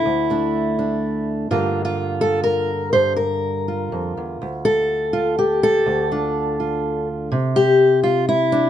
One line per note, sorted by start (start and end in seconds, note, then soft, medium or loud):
0.00 1.28 E4 medium
0.06 1.50 D2 medium
0.30 1.48 A3 soft
0.30 0.78 D4 soft
0.79 1.50 D4 soft
1.51 2.92 G2 medium
1.51 4.41 D3 soft
1.51 2.93 A#3 soft
1.51 1.84 F4 medium
1.85 2.70 F4 medium
2.21 2.43 A4 medium
2.44 2.92 A#4 medium
2.93 3.92 G2 medium
2.93 3.16 C5 medium
3.16 4.40 A#4 medium
3.68 5.13 F4 soft
3.92 4.17 F2 medium
4.17 4.41 E2 medium
4.42 5.85 D2 medium
4.65 5.62 A4 medium
5.13 5.38 F4 medium
5.39 6.11 G4 medium
5.63 7.07 A4 medium
5.86 7.31 D2 medium
6.12 7.35 D4 soft
6.12 6.59 F4 soft
6.60 7.29 F4 soft
7.32 8.70 C3 medium
7.56 8.03 G4 medium
8.03 8.27 F4 medium
8.29 8.70 E4 loud
8.52 8.70 D4 medium